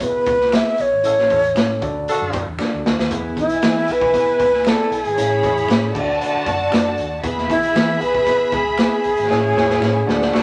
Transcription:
0.00 B3 E4 G#4 B4, kick, closed hi-hat
0.15 muted fingered electric bass stroke
0.26 C#2, kick, closed hi-hat
0.41 snare
0.52 B3 E4 G#4 B4 E5, finger snap, snare, closed hi-hat
0.78 B1 C#5, closed hi-hat
0.92 G#1
1.04 A1 A2 C#4 E4 A4 C#5, closed hi-hat
1.18 snare
1.30 E2 C#4 E4 A4, kick, closed hi-hat
1.44 closed hi-hat
1.55 A2 C#4 E4 A4 C#5, finger snap, snare, closed hi-hat
1.81 D2 D3 D4 F#4 A4 D5, kick, closed hi-hat
2.08 D4 F#4 A4, closed hi-hat
2.21 F#2
2.33 F#2, kick, closed hi-hat
2.47 E2
2.59 D4 F#4 A4 D5, finger snap, snare
2.73 D2
2.86 D2, snare
2.99 D#2, snare
3.10 E2 E3 B3 E4 G#4 B4 G#5, kick, closed hi-hat
3.37 B1 E4, kick, closed hi-hat
3.49 closed hi-hat
3.62 E3 B3 E4 G#4 B4, finger snap, snare, closed hi-hat
3.88 B1, closed hi-hat
3.92 B4
4.01 kick
4.13 B3 E4 G#4 B4, kick, closed hi-hat
4.27 muted fingered electric bass stroke
4.40 C#2, kick, closed hi-hat
4.54 snare
4.64 B3 E4 G#4 A4 D5, finger snap, snare, closed hi-hat
4.91 B1 G#4, closed hi-hat
5.04 G#1, closed hi-hat
5.17 A1 A2 A3 C#4 E4 C#5 B5, closed hi-hat
5.43 E2, kick, closed hi-hat
5.57 closed hi-hat
5.68 A2 C#4 E4 A4 C#5, finger snap, snare, closed hi-hat
5.92 D2 D3 D4 F#4 A4 D5 A5, kick
5.96 crash
6.21 closed hi-hat
6.35 muted fingered electric bass stroke
6.46 F#2, kick, closed hi-hat
6.71 F#2 D4 F#4 A4 D5, finger snap, snare, closed hi-hat
6.98 D#2, closed hi-hat
7.22 E2 E3 B3 E4 G#4 B4 E5 B5, kick, closed hi-hat
7.38 snare
7.50 B1 E4, kick, closed hi-hat
7.63 closed hi-hat
7.75 E3 B3 E4 G#4 B4, finger snap, snare, closed hi-hat
8.01 B1 B4, closed hi-hat
8.15 kick
8.27 B3 E4 G#4 B4, kick, closed hi-hat
8.40 muted fingered electric bass stroke
8.52 C#2 G#4, kick, closed hi-hat
8.78 B3 E4 G#4 B4, finger snap, snare, closed hi-hat
9.04 B1, closed hi-hat
9.17 G#1, closed hi-hat
9.28 A1 A2 A3 C#4 E4 C#5 G#5, snare
9.56 E2 A3 C#4 E4, snare
9.70 snare
9.80 A2 C#4 E4 A4 C#5, finger snap, snare
10.07 D2 D3 A3 D4 F#4 D5 F#5, snare
10.22 snare
10.34 A3 D4 F#4, kick, snare

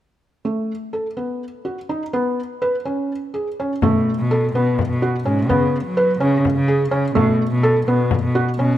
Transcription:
0.45 A3
0.93 A4
1.17 B3
1.65 F#4
1.89 D#4
2.13 B3
2.62 B4
2.85 C#4
3.34 G#4
3.60 C#4
3.82 B2 A3, frame drum
4.18 B2
4.31 A4
4.53 B2 B3
4.79 frame drum
4.89 B2
5.02 F#4
5.24 G#2 C#4
5.48 C#3 B3, frame drum
5.85 F#3
5.97 B4
6.19 C#3 C#4
6.45 frame drum
6.56 C#3
6.68 G#4
6.91 C#3 C#4
7.15 B2 A3, frame drum
7.52 B2
7.63 A4
7.87 B2 B3
8.11 frame drum
8.23 B2
8.35 F#4
8.58 B2 C#4

